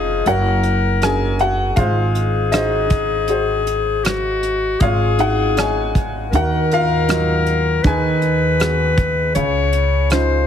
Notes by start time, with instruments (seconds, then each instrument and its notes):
Already playing: upright bass F1, upright piano F3 C#4 D#4 F4 G#4 C5 C#5 D#5 F5, clarinet G#4
0.26 upright bass F#1, upright piano F#3 F#4 A#4 C#5 F#5, clarinet A#4, closed hi-hat
0.63 closed hi-hat
1.02 upright piano C#4 F#4 G#4 A#4 G#5, cross-stick, closed hi-hat
1.39 upright piano F#4 F#5, closed hi-hat
1.76 upright bass G#1, upright piano G#3 F4 C5 F5, clarinet G#4, kick, closed hi-hat
2.15 closed hi-hat
2.52 upright piano D#4 F#4 G#4 C5 D#5, cross-stick, closed hi-hat
2.90 kick, closed hi-hat
3.28 upright piano F#4 G#4 C5, closed hi-hat
3.67 closed hi-hat
4.04 clarinet F#4, cross-stick, closed hi-hat
4.43 closed hi-hat
4.80 upright bass G#1, upright piano G#3 F4 G#4 C#5 F5, clarinet G#4, kick, closed hi-hat
5.19 felt piano D#4, upright piano F#4 F#5, closed hi-hat
5.56 upright piano D#4 G#4 C#5 G#5, cross-stick, closed hi-hat
5.95 kick, closed hi-hat
6.31 upright bass D#2, upright piano D#3, clarinet A#4, closed hi-hat
6.35 upright piano F#4 A#4 F#5
6.71 upright piano F4 A#4 F5, closed hi-hat
7.08 upright piano F#3 D#4 F4, cross-stick, closed hi-hat
7.46 closed hi-hat
7.82 upright bass D#2, upright piano D#3 B4, clarinet B4, kick, closed hi-hat
7.87 upright piano G#4 G#5
8.22 closed hi-hat
8.60 upright piano B3 F#4 G#4, cross-stick, closed hi-hat
8.98 kick, closed hi-hat
9.35 upright bass C#2, upright piano C#3, clarinet C#5, closed hi-hat
9.73 closed hi-hat
10.10 upright piano C#4 D#4 F4, clarinet C5, cross-stick, closed hi-hat